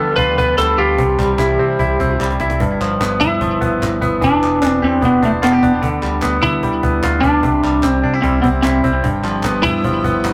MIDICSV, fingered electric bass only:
0, 0, Header, 1, 2, 480
1, 0, Start_track
1, 0, Tempo, 402685
1, 1175, Time_signature, 4, 2, 24, 8
1, 12316, End_track
2, 0, Start_track
2, 0, Title_t, "Fingered electric bass"
2, 0, Program_c, 0, 33
2, 0, Note_on_c, 0, 50, 86
2, 211, Note_on_c, 0, 38, 96
2, 229, Note_off_c, 0, 50, 0
2, 408, Note_off_c, 0, 38, 0
2, 459, Note_on_c, 0, 38, 95
2, 654, Note_off_c, 0, 38, 0
2, 683, Note_on_c, 0, 38, 100
2, 885, Note_off_c, 0, 38, 0
2, 928, Note_on_c, 0, 38, 99
2, 1129, Note_off_c, 0, 38, 0
2, 1177, Note_on_c, 0, 36, 102
2, 1375, Note_off_c, 0, 36, 0
2, 1417, Note_on_c, 0, 36, 99
2, 1615, Note_off_c, 0, 36, 0
2, 1649, Note_on_c, 0, 36, 98
2, 1851, Note_off_c, 0, 36, 0
2, 1896, Note_on_c, 0, 48, 96
2, 2095, Note_off_c, 0, 48, 0
2, 2140, Note_on_c, 0, 36, 107
2, 2338, Note_off_c, 0, 36, 0
2, 2381, Note_on_c, 0, 36, 85
2, 2579, Note_off_c, 0, 36, 0
2, 2623, Note_on_c, 0, 36, 97
2, 2821, Note_off_c, 0, 36, 0
2, 2864, Note_on_c, 0, 36, 110
2, 3062, Note_off_c, 0, 36, 0
2, 3107, Note_on_c, 0, 31, 97
2, 3303, Note_off_c, 0, 31, 0
2, 3348, Note_on_c, 0, 31, 99
2, 3545, Note_off_c, 0, 31, 0
2, 3581, Note_on_c, 0, 31, 92
2, 3826, Note_on_c, 0, 43, 93
2, 3844, Note_off_c, 0, 31, 0
2, 4066, Note_on_c, 0, 31, 104
2, 4084, Note_off_c, 0, 43, 0
2, 4264, Note_off_c, 0, 31, 0
2, 4310, Note_on_c, 0, 31, 85
2, 4506, Note_off_c, 0, 31, 0
2, 4555, Note_on_c, 0, 31, 101
2, 4750, Note_off_c, 0, 31, 0
2, 4793, Note_on_c, 0, 31, 100
2, 4988, Note_off_c, 0, 31, 0
2, 5033, Note_on_c, 0, 28, 105
2, 5228, Note_off_c, 0, 28, 0
2, 5275, Note_on_c, 0, 28, 102
2, 5469, Note_off_c, 0, 28, 0
2, 5515, Note_on_c, 0, 28, 95
2, 5710, Note_off_c, 0, 28, 0
2, 5753, Note_on_c, 0, 40, 91
2, 5948, Note_off_c, 0, 40, 0
2, 5990, Note_on_c, 0, 28, 105
2, 6186, Note_off_c, 0, 28, 0
2, 6229, Note_on_c, 0, 28, 83
2, 6426, Note_off_c, 0, 28, 0
2, 6467, Note_on_c, 0, 28, 102
2, 6664, Note_off_c, 0, 28, 0
2, 6709, Note_on_c, 0, 28, 113
2, 6947, Note_off_c, 0, 28, 0
2, 6947, Note_on_c, 0, 38, 101
2, 7144, Note_off_c, 0, 38, 0
2, 7189, Note_on_c, 0, 38, 108
2, 7385, Note_off_c, 0, 38, 0
2, 7426, Note_on_c, 0, 38, 103
2, 7623, Note_off_c, 0, 38, 0
2, 7662, Note_on_c, 0, 50, 100
2, 7899, Note_off_c, 0, 50, 0
2, 7899, Note_on_c, 0, 38, 103
2, 8099, Note_off_c, 0, 38, 0
2, 8148, Note_on_c, 0, 38, 90
2, 8343, Note_off_c, 0, 38, 0
2, 8384, Note_on_c, 0, 38, 102
2, 8581, Note_off_c, 0, 38, 0
2, 8622, Note_on_c, 0, 38, 106
2, 8819, Note_off_c, 0, 38, 0
2, 8863, Note_on_c, 0, 36, 104
2, 9059, Note_off_c, 0, 36, 0
2, 9102, Note_on_c, 0, 36, 93
2, 9299, Note_off_c, 0, 36, 0
2, 9347, Note_on_c, 0, 36, 88
2, 9541, Note_off_c, 0, 36, 0
2, 9583, Note_on_c, 0, 48, 100
2, 9778, Note_off_c, 0, 48, 0
2, 9814, Note_on_c, 0, 36, 105
2, 10013, Note_off_c, 0, 36, 0
2, 10061, Note_on_c, 0, 36, 86
2, 10257, Note_off_c, 0, 36, 0
2, 10296, Note_on_c, 0, 36, 101
2, 10493, Note_off_c, 0, 36, 0
2, 10539, Note_on_c, 0, 36, 99
2, 10735, Note_off_c, 0, 36, 0
2, 10780, Note_on_c, 0, 31, 99
2, 10975, Note_off_c, 0, 31, 0
2, 11011, Note_on_c, 0, 31, 99
2, 11209, Note_off_c, 0, 31, 0
2, 11255, Note_on_c, 0, 31, 100
2, 11494, Note_on_c, 0, 43, 102
2, 11512, Note_off_c, 0, 31, 0
2, 11729, Note_on_c, 0, 31, 110
2, 11747, Note_off_c, 0, 43, 0
2, 11927, Note_off_c, 0, 31, 0
2, 11973, Note_on_c, 0, 31, 89
2, 12169, Note_off_c, 0, 31, 0
2, 12213, Note_on_c, 0, 31, 108
2, 12316, Note_off_c, 0, 31, 0
2, 12316, End_track
0, 0, End_of_file